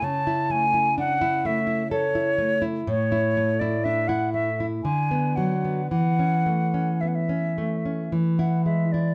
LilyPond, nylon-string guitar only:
\new Staff \with { instrumentName = "Nylon-string guitar" } { \time 3/4 \key a \major \tempo 4 = 60 cis16 e'16 a16 e'16 d'16 e'16 a16 e'16 a'16 e'16 a16 e'16 | a,16 e'16 a16 e'16 d'16 e'16 a16 e'16 d16 b16 fis16 b16 | e16 cis'16 a16 cis'16 b16 cis'16 a16 cis'16 e16 e'16 gis16 e'16 | }